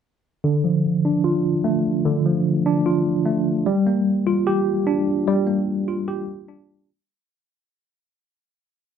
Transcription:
0.44 1.45 D3 loud
0.64 1.65 F3 medium
1.05 2.05 D4 medium
1.24 2.25 F4 loud
1.64 2.65 A3 medium
2.05 3.06 D3 medium
2.26 3.26 F3 medium
2.66 3.66 D4 medium
2.86 3.66 F4 medium
3.26 3.66 A3 medium
3.66 4.67 G3 loud
3.87 4.87 A#3 medium
4.27 5.27 F4 medium
4.47 5.48 G4 loud
4.87 5.88 D4 medium
5.28 6.28 G3 medium
5.47 6.48 A#3 medium
5.88 6.89 F4 medium
6.08 6.88 G4 medium
6.48 6.89 D4 medium

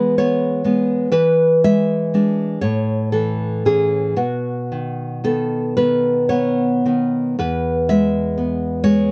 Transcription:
0.00 1.08 E3 medium
0.00 0.63 G#3 medium
0.00 0.17 B3 medium
0.00 0.16 B4 loud
0.18 0.63 B3 medium
0.18 1.08 C#5 medium
0.64 1.09 G#3 soft
0.64 1.09 B3 medium
1.12 2.58 E3 medium
1.12 1.60 B4 loud
1.64 2.13 G#3 medium
1.64 2.59 E5 medium
2.14 2.59 G#3 medium
2.14 2.59 D4 medium
2.61 4.13 A2 medium
2.61 3.10 C#5 medium
3.12 3.65 E3 medium
3.12 3.62 A4 medium
3.65 4.14 E3 soft
3.65 4.14 C#4 soft
3.65 4.16 G#4 medium
4.16 7.35 B2 medium
4.16 6.81 F#4 medium
4.72 5.23 D#3 soft
5.24 5.76 D#3 soft
5.24 5.76 B3 medium
5.24 5.74 A4 medium
5.77 6.84 D#3 soft
5.77 6.28 B3 medium
5.77 6.28 B4 medium
6.29 6.85 B3 medium
6.29 7.35 C#5 medium
6.86 7.36 D#3 soft
6.86 7.36 B3 soft
7.39 9.12 E2 medium
7.39 7.88 B4 medium
7.89 8.83 G#3 medium
7.89 8.79 E5 loud
8.38 9.12 B3 medium
8.84 9.12 G#3 medium
8.84 9.12 C#5 loud

